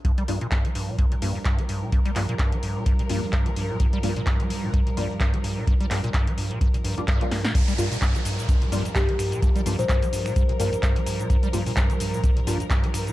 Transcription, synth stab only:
X:1
M:4/4
L:1/16
Q:"Swing 16ths" 1/4=128
K:Gm
V:1 name="Synth stab"
z2 [G,B,DF] z6 z [G,B,DF] z4 z | z2 [G,B,DF] z6 z [G,B,DF] z4 z | z2 [G,B,DF] z6 z [G,B,DF] z4 z | z2 [G,B,DF] z8 [G,B,DF] z [G,B,DF]3 |
z2 [G,B,DF] z6 z [G,B,DF] z4 z | z2 [G,B,DF] z6 z [G,B,DF] z4 z | z2 [G,B,DF] z6 z [G,B,DF] z4 z |]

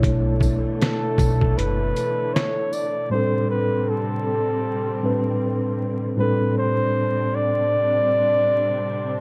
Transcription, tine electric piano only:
X:1
M:4/4
L:1/8
Q:"Swing 16ths" 1/4=78
K:Am
V:1 name="Tine electric piano"
[B,,A,DE^c]6- [B,,A,DEc] z | [A,,G,CDA]4- [A,,G,CDA] [A,,G,CDB]3 | [A,,G,CDA]8 |]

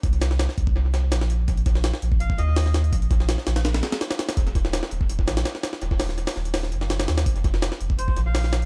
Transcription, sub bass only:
X:1
M:4/4
L:1/8
Q:1/4=166
K:Bbdor
V:1 name="Sub bass" clef=bass
C,,2 z C,,3 B,,,2 | B,,,2 z B,,,2 E,,3 | B,,,2 z B,,,2 z3 | E,,,2 z E,,,2 B,,, z2 |
E,,,2 z E,,,2 _G,,,2 E,, | F,,,2 z F,,,2 B,,,3 |]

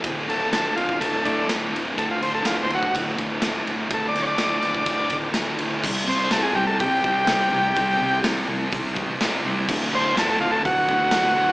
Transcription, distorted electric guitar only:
X:1
M:4/4
L:1/8
Q:1/4=125
K:Dmix
V:1 name="Distorted electric guitar" clef=bass
[D,,A,,D,] [A,,D,] [D,,A,,D,]3 [A,,D,] [D,,A,,D,] [A,,D,] | [D,,A,,D,] [A,,D,] [D,,A,,D,]3 [A,,D,] [D,,A,,D,] [A,,D,] | [D,,A,,D,] [A,,D,] [D,,A,,D,]3 [A,,D,] [D,,A,,D,] [A,,D,] | [C,G,C] [C,G,C] [C,G,C] [C,G,C] [C,G,C] [C,G,C] [C,G,C] [C,G,C] |
[C,G,C] [C,G,C] [C,G,C] [C,G,C] [C,G,C] [C,G,C] [C,G,C] [C,G,C] | [D,,A,,D,] [D,,A,,D,] [D,,A,,D,] [D,,A,,D,] [D,,A,,D,] [D,,A,,D,] [D,,A,,D,] [D,,A,,D,] |]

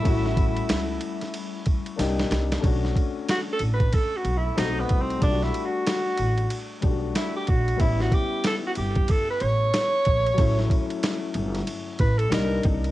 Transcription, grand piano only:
X:1
M:4/4
L:1/8
Q:"Swing 16ths" 1/4=93
K:Bm
V:1 name="Grand piano"
[A,CEF]6 [_B,D_EG]2 | [A,CDF]6 [A,=C^DF]2 | [G,A,D^EF]4- [G,A,DEF] [G,A,DF]3 | [G,B,CE]8 |
[F,A,CE]6 [G,_B,D_E]2 |]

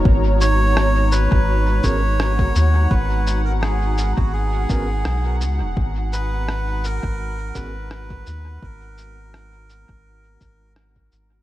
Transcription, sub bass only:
X:1
M:4/4
L:1/16
Q:"Swing 16ths" 1/4=84
K:G#m
V:1 name="Sub bass" clef=bass
G,,,6- G,,, G,,,3 G,,,4 D,,2 | G,,,6- G,,, G,,,3 G,,,2 B,,,2 C,, D,,, | G,,,6- G,,, G,,,3 G,,,4 D,,2 | G,,,6- G,,, G,,,3 G,,,4 G,,,2 |]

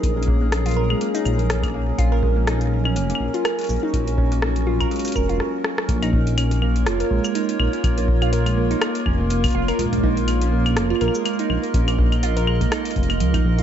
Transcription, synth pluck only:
X:1
M:4/4
L:1/16
Q:"Swing 16ths" 1/4=123
K:Bbm
V:1 name="Synth pluck"
z D B, B, z F B A, B, E z2 D B, B, z | F B A, B, E z2 D B, B, z F B A, B, E | z2 D B, B, z F B A, B, B F z4 | B, E z2 D B, B, z F B A, B, E z2 D |
B, B, z F B A, B, E z2 D B, B, z F B | A, B, E z2 D B, B, z F B A, B, E z2 | D B, B, z F B A, B, E z2 B, F, E z F |]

